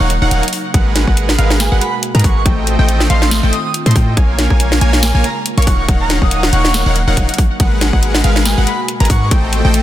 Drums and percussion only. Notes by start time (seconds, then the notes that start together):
0.10 closed hi-hat
0.31 closed hi-hat
0.43 closed hi-hat
0.48 closed hi-hat
0.53 open hi-hat
0.74 kick, closed hi-hat
0.96 snare, closed hi-hat
1.07 kick
1.17 closed hi-hat
1.29 snare
1.39 closed hi-hat
1.50 snare
1.60 snare, closed hi-hat
1.81 closed hi-hat
2.03 closed hi-hat
2.15 closed hi-hat
2.20 closed hi-hat
2.24 kick, open hi-hat
2.46 kick, closed hi-hat
2.67 closed hi-hat
2.89 closed hi-hat
3.00 snare
3.10 closed hi-hat
3.22 snare
3.31 snare, closed hi-hat
3.53 closed hi-hat
3.74 closed hi-hat
3.86 closed hi-hat
3.91 closed hi-hat
3.96 kick, open hi-hat
4.17 kick, closed hi-hat
4.39 snare, closed hi-hat
4.50 kick
4.60 closed hi-hat
4.72 snare
4.81 closed hi-hat
4.93 snare
5.03 snare, closed hi-hat
5.24 closed hi-hat
5.46 closed hi-hat
5.58 closed hi-hat
5.62 closed hi-hat
5.67 kick, open hi-hat
5.88 kick, closed hi-hat
6.10 snare, closed hi-hat
6.22 kick
6.31 closed hi-hat
6.43 snare
6.53 closed hi-hat
6.65 snare
6.74 snare, closed hi-hat
6.96 closed hi-hat
7.17 kick, closed hi-hat
7.29 closed hi-hat
7.34 closed hi-hat
7.38 kick, open hi-hat
7.60 kick, closed hi-hat
7.81 snare, closed hi-hat
7.93 kick
8.03 closed hi-hat
8.15 snare
8.24 closed hi-hat
8.36 snare
8.45 snare, closed hi-hat
8.67 closed hi-hat
8.88 closed hi-hat
9.00 closed hi-hat
9.05 closed hi-hat
9.10 kick, open hi-hat
9.31 kick, closed hi-hat
9.53 closed hi-hat
9.74 closed hi-hat